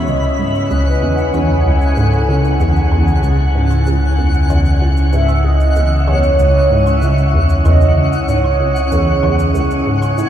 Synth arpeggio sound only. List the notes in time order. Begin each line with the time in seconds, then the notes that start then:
0.08 C#2
0.39 G#2
0.71 C#2
1.02 E2
1.34 E2
1.65 C#2
1.97 G#2
2.29 C#2
2.60 E2
2.92 E2
3.23 C#2
3.55 G#2
3.86 C#2
4.18 E2
4.50 E2
4.81 C#2
5.13 G#2
5.44 C#2
5.76 E2
6.07 E2
6.39 C#2
6.71 G#2
7.02 C#2
7.34 E2
7.65 E2
7.97 C#2
8.28 G#2
8.60 C#2
8.92 E2
9.23 E2
9.55 C#2
9.86 G#2
10.18 A2